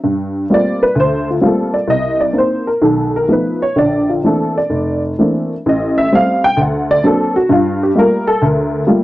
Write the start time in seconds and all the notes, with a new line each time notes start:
0.04 G2
0.50 G3 A3 A#3 C4 F4
0.54 D5
0.83 B4
0.95 D2
1.00 C5
1.30 F4
1.41 G3 A3 A#3 C4 F4
1.46 A4
1.74 D5
1.88 C2 D#5
2.21 D5
2.33 A#3 C4 D#4
2.38 C5
2.67 A#4
2.82 B1 D#3 A4
3.16 A#4
3.28 F3 A3 B3 D#4
3.33 B4
3.62 C#5
3.76 A#1 D3 D5
4.09 F4
4.24 E3 A3 A#3 C4 D4 A4
4.58 D5
4.70 F1
5.19 E3 A3 A#3 C4 D4
5.66 A1 D#5
5.98 E5
6.12 G3 A3 C4 F5
6.44 G5
6.57 D2
6.62 F#5
6.91 D5
7.04 F#3 A#3 C4 D4 A4
7.36 F#4
7.49 G2 F4
7.83 G4
7.95 G3 A3 A#3 F4 A#4
8.27 A4
8.42 D2 A#4
8.87 G3 A3 A#3 F4